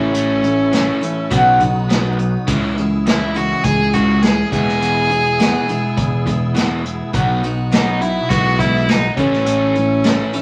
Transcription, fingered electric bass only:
Already playing: A1
1.31 B1
2.48 C#2
3.64 C#2
4.52 E2
5.97 E2
7.14 B1
8.30 B1
9.17 A1

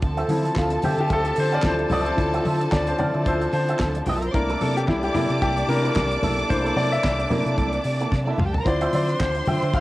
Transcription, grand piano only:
0.29 F3 C4 E4
0.56 F4
0.84 G4
1.00 G4
1.13 A4
1.40 C5
1.55 D5
1.64 F3 C4 E4 C5
1.93 D5
2.07 C5
2.17 F3 C4 E4
2.72 D5
2.88 C5
2.98 F3 C4 E4 D5
3.27 C5
3.53 C5
4.33 A3 A#3 D4 E4 A#4
4.61 A4
4.77 G4
4.88 E4
5.03 G4
5.14 E4
5.42 G4
5.68 A3 A#3 D4 E4 A#4
6.49 A3 A#3 D4 E4 C5
6.77 D5
6.92 E5
7.30 A3 A#3 D4 E4
8.65 F3 C4 E4 D5
8.95 D5
9.21 C5
9.47 G5
9.74 F5

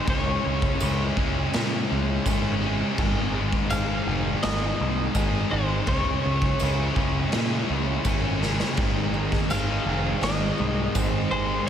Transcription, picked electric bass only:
0.07 C#2
0.46 C#2
0.82 C#2
1.17 C#2
1.56 A#2
1.91 C#2
2.26 G#1
2.98 G#1
3.72 G#1
4.07 F1
4.44 G#1
4.81 C2
5.16 G#1
5.53 G#1
5.88 C#2
6.26 C#2
6.62 C#2
6.96 C#2
7.35 A#2
7.70 C#2
8.06 G#1
8.78 G#1
9.51 G#1
9.86 F1
10.22 G#1
10.60 C2
10.96 G#1
11.32 G#1

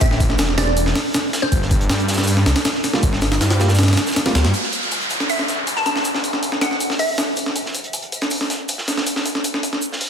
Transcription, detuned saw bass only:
0.01 A1
0.39 E1
1.52 G1
1.90 G2
2.46 C2
3.03 G1
3.41 G2
4.35 D2
4.45 G2

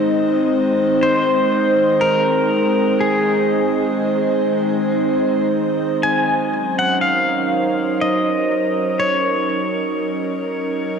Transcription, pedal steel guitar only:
1.03 C5
2.01 A#4
3.01 G#4
6.03 G#5
6.79 F#5
7.01 F5
8.02 D#5
9.00 C#5

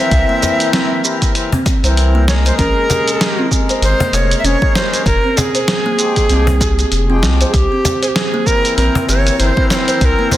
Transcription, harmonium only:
Already playing: E3 C4 A#4
1.03 E3 C4 A#4
1.33 E3 C4 A#4
1.83 E3 C4 A#4
2.26 G#3 A#4
3.49 G#3
3.53 A#4
4.43 G#3 C#4 A#4
4.61 G#3 C#4 A#4
5.97 F3 G#3 G4
6.28 F3 G#3 G4
7.08 F3 G#3 G4
8.45 E3 C4 A#4
9.38 E3 C4 A#4
9.55 E3 C4
9.59 A#4

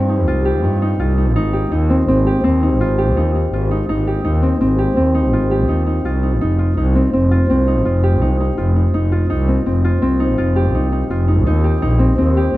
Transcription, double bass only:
Already playing: G2
0.27 C2
0.63 G2
0.99 C2
1.35 G#1
1.71 D#2
2.07 G#1
2.43 D#2
2.79 G#1
3.15 D#2
3.52 G#1
3.89 G#1
4.24 D#2
4.61 G#1
4.96 D#2
5.32 G#1
5.68 D#2
6.05 C2
6.41 F1
6.77 C2
7.14 F1
7.49 C2
7.85 F1
8.21 C2
8.57 F1
8.95 F1
9.31 C2
9.66 F1
10.01 C2
10.38 F1
10.74 C2
11.09 F1
11.46 D#2
11.82 A#1
12.18 D#2

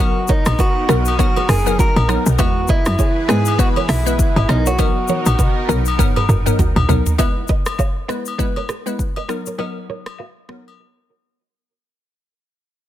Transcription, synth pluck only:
0.00 F#3 B3 D#4 A#4
0.89 F#3 B3 D#4 A#4
1.19 F#3 B3 D#4 A#4
1.66 F#3 B3 D#4 A#4
2.08 F#3 B3 D#4 A#4
2.38 G#3 B3 E4 B4
3.28 G#3 B3 E4 B4
3.58 G#3 B3 E4 B4
4.06 G#3 B3 E4 B4
4.49 F#3 B3 D#4 A#4
4.79 F#3 B3 D#4 A#4
5.68 F#3 B3 D#4 A#4
5.99 F#3 B3 D#4 A#4
6.46 F#3 B3 D#4 A#4
6.89 F#3 B3 D#4 A#4
7.18 G#3 B3 E4 B4
8.08 G#3 B3 E4 B4
8.38 G#3 B3 E4 B4
8.86 G#3 B3 E4 B4
9.28 F#3 B3 D#4 A#4
9.58 F#3 B3 D#4 A#4
10.49 F#3 B3 D#4 A#4

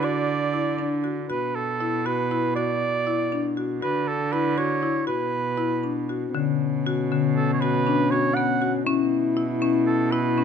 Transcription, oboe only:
0.04 D5
1.30 B4
1.56 A4
2.06 B4
2.56 D5
3.82 B4
4.08 A4
4.33 B4
4.58 C#5
5.07 B4
7.37 A4
7.54 C#5
7.61 B4
8.11 C#5
8.35 F#5
9.86 A4
10.12 B4

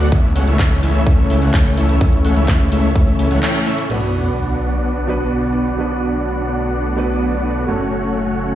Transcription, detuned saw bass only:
0.12 C#2
0.36 C#2
0.47 C#2
0.59 C#2
0.83 C#2
1.07 C#2
1.30 C#2
1.42 C#2
1.54 C#2
1.77 C#2
2.01 C#2
2.25 C#2
2.36 C#2
2.48 C#2
2.72 C#2
2.96 C#2
3.19 C#2
3.31 C#2
3.90 B1
7.68 F#1

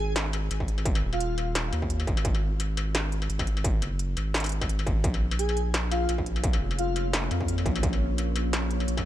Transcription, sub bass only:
Already playing: G#1
0.51 G#1
1.03 D#1
1.73 D#2
2.08 G#1
2.25 G#1
3.30 G#1
3.82 F#1
4.17 G#1
4.87 G#1
5.04 A#1
6.09 A#1
6.61 F1
7.31 F2
7.66 A#1
7.83 A#1
8.88 A#1

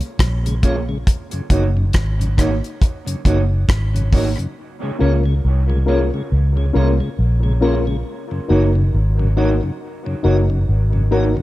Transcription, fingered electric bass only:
0.19 A#1
1.51 F#1
1.95 G#1
3.26 F#1
3.69 G#1
5.01 C#2
5.45 C2
6.32 C#2
6.75 C2
7.19 A#1
8.50 F#1
8.94 G#1
10.25 F#1
10.69 G#1

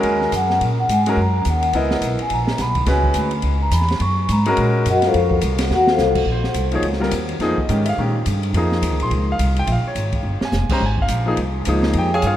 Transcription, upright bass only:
0.04 D#2
0.32 F#2
0.61 A#2
0.89 G#2
1.17 F#2
1.46 D#2
1.73 C#2
2.01 B1
2.19 muted upright bass stroke
2.31 A#1
2.59 B1
2.86 C#2
3.15 D2
3.43 C#2
3.71 E2
4.00 F#2
4.29 G#2
4.58 A#2
4.86 F#2
5.14 F2
5.42 C2
5.70 D#2
5.98 C2
6.25 A#1
6.54 C2
6.82 C#2
7.12 D#2
7.39 F2
7.57 muted upright bass stroke
7.69 G#2
7.98 A#2
8.26 G2
8.53 F2
8.82 D#2
8.91 C#2
9.01 A#1
9.11 C#2
9.39 C2
9.67 A#1
9.84 muted upright bass stroke
9.95 G#1
10.23 G1
10.41 muted upright bass stroke
10.52 F1
10.69 muted upright bass stroke
10.80 G#1
11.08 A#1
11.37 C2
11.67 C#2
11.94 F2
12.23 G2

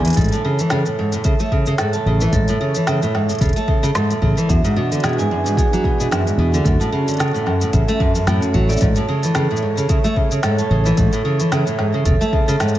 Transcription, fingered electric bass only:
Already playing: E2
0.17 A1
2.06 A1
2.32 A1
3.41 E1
4.22 A1
4.49 E2
6.37 E2
6.65 D2
7.73 A1
8.27 F#2
8.54 A1
8.81 A1
10.70 A1
10.98 A1
12.06 E1

